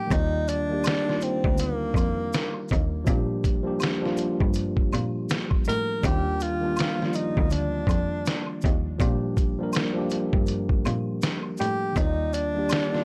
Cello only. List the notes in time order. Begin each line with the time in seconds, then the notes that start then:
0.11 D#2
1.45 D2
1.95 F2
2.72 D#2
3.08 A#2
4.41 G2
4.94 A#2
5.68 A2
6.04 D#2
7.38 D2
7.87 F2
8.65 D#2
9.00 A#2
10.34 G2
10.86 A#2
11.60 A2
11.96 D#2